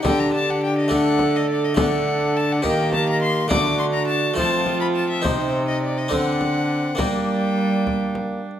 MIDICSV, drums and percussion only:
0, 0, Header, 1, 2, 480
1, 0, Start_track
1, 0, Tempo, 575816
1, 48, Time_signature, 6, 3, 24, 8
1, 4368, Tempo, 583658
1, 7130, End_track
2, 0, Start_track
2, 0, Title_t, "Frame drum"
2, 39, Note_on_c, 9, 64, 79
2, 122, Note_off_c, 9, 64, 0
2, 758, Note_on_c, 9, 64, 47
2, 841, Note_off_c, 9, 64, 0
2, 994, Note_on_c, 9, 64, 49
2, 1077, Note_off_c, 9, 64, 0
2, 1476, Note_on_c, 9, 64, 86
2, 1560, Note_off_c, 9, 64, 0
2, 2201, Note_on_c, 9, 64, 51
2, 2285, Note_off_c, 9, 64, 0
2, 2440, Note_on_c, 9, 64, 52
2, 2524, Note_off_c, 9, 64, 0
2, 2923, Note_on_c, 9, 64, 83
2, 3006, Note_off_c, 9, 64, 0
2, 3644, Note_on_c, 9, 64, 52
2, 3727, Note_off_c, 9, 64, 0
2, 3888, Note_on_c, 9, 64, 49
2, 3971, Note_off_c, 9, 64, 0
2, 4375, Note_on_c, 9, 64, 77
2, 4458, Note_off_c, 9, 64, 0
2, 5089, Note_on_c, 9, 64, 49
2, 5171, Note_off_c, 9, 64, 0
2, 5330, Note_on_c, 9, 64, 49
2, 5412, Note_off_c, 9, 64, 0
2, 5804, Note_on_c, 9, 64, 79
2, 5886, Note_off_c, 9, 64, 0
2, 6529, Note_on_c, 9, 64, 47
2, 6612, Note_off_c, 9, 64, 0
2, 6763, Note_on_c, 9, 64, 47
2, 6845, Note_off_c, 9, 64, 0
2, 7130, End_track
0, 0, End_of_file